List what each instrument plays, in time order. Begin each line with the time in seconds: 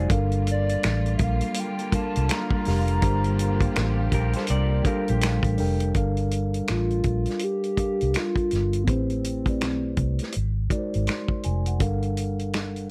Already playing: tine electric piano F#3 G#3 D#4 F#4 C5 D5
0.09 fingered electric bass G1, tine electric piano G3 D4 A4 A#4 F5, string section G3 A#3 F4, kick, closed hi-hat
0.32 closed hi-hat
0.47 closed hi-hat
0.51 soft synth lead D5
0.69 closed hi-hat
0.83 fingered electric bass A1, finger snap, snare, closed hi-hat
1.06 closed hi-hat
1.17 fingered electric bass A#1, soft synth lead E5, kick, closed hi-hat
1.23 soft synth lead F5
1.41 closed hi-hat
1.54 horn section D3 A#3 F4, closed hi-hat
1.59 soft synth lead G5
1.79 closed hi-hat
1.92 tine electric piano G3 D4 A4 A#4 F5, soft synth lead A5, muted fingered electric bass stroke, kick, closed hi-hat
2.16 fingered electric bass C2, closed hi-hat
2.29 soft synth lead A#5, finger snap, snare, closed hi-hat
2.51 kick
2.65 fingered electric bass F1, tine electric piano G3 D4 G4 A#4 F5, snare, open hi-hat
2.88 closed hi-hat
3.01 fingered electric bass G1, tine electric piano G3 D4 G4 A#4 C5, string section G4, kick, closed hi-hat
3.24 closed hi-hat
3.39 closed hi-hat
3.61 kick, closed hi-hat
3.76 fingered electric bass A1, finger snap, snare, closed hi-hat
4.12 fingered electric bass A#1, clean electric guitar G4 A#4, kick, closed hi-hat
4.33 clean electric guitar A4 C5, closed hi-hat
4.37 snare
4.47 fingered electric bass C2, clean electric guitar A#4 D5, closed hi-hat
4.84 tine electric piano G3 D4 A4 A#4 F5, clean electric guitar G4 A#4, muted fingered electric bass stroke, kick, closed hi-hat
5.08 fingered electric bass A#1, clean electric guitar G4, closed hi-hat
5.21 finger snap, snare, closed hi-hat
5.43 fingered electric bass A1, kick, closed hi-hat
5.57 fingered electric bass F1, tine electric piano G3 D4 A4 A#4 G5, open hi-hat
5.80 closed hi-hat
5.94 fingered electric bass G1, tine electric piano G3 D4 A4 A#4 F5, kick, closed hi-hat
6.17 closed hi-hat
6.31 closed hi-hat
6.54 closed hi-hat
6.67 fingered electric bass A1, soft synth lead F4, finger snap, snare, closed hi-hat
6.90 closed hi-hat
7.03 fingered electric bass A#1, kick, closed hi-hat
7.26 closed hi-hat
7.30 snare
7.39 closed hi-hat
7.44 soft synth lead G4
7.64 closed hi-hat
7.77 tine electric piano G3 D4 A4 A#4 F5, muted fingered electric bass stroke, kick, closed hi-hat
8.01 fingered electric bass C2, closed hi-hat
8.14 soft synth lead F4, finger snap, snare, closed hi-hat
8.36 kick, closed hi-hat
8.51 fingered electric bass G1, snare, closed hi-hat
8.73 closed hi-hat
8.84 tine electric piano A3 E4, soft synth lead B3, kick, closed hi-hat
8.88 fingered electric bass A1, soft synth lead C4, tine electric piano G4 B4 C5
9.10 closed hi-hat
9.24 closed hi-hat
9.46 tine electric piano A3 E4 G4 B4 D5, kick, closed hi-hat
9.61 fingered electric bass B1, finger snap, snare, closed hi-hat
9.97 fingered electric bass C2, kick, closed hi-hat
10.19 closed hi-hat
10.23 snare
10.32 closed hi-hat
10.37 fingered electric bass G#1
10.70 tine electric piano G#3 D#4 F#4 A#4 D5, muted fingered electric bass stroke, kick, closed hi-hat
10.78 tine electric piano C5
10.94 fingered electric bass G#1, closed hi-hat
11.07 tine electric piano C6, finger snap, snare, closed hi-hat
11.28 kick
11.43 fingered electric bass F1, tine electric piano G#5, closed hi-hat
11.66 tine electric piano F#5, closed hi-hat
11.79 fingered electric bass G1, tine electric piano G3 D4 A4 A#4 F5, kick, closed hi-hat
12.02 closed hi-hat
12.17 closed hi-hat
12.39 closed hi-hat
12.53 finger snap, snare, closed hi-hat
12.76 closed hi-hat